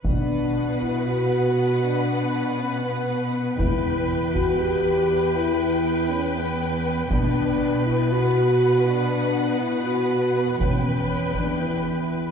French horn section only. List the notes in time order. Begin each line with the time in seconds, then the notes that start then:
0.06 D4
0.81 E4
1.06 F#4
1.84 D4
2.58 C#4
2.83 B3
3.58 E4
4.35 F#4
4.61 G4
5.35 E4
6.10 C#4
6.36 B3
7.10 D4
7.85 E4
8.12 F#4
8.87 D4
9.59 E4
9.84 F#4
10.59 C#4
11.36 D4
11.60 E4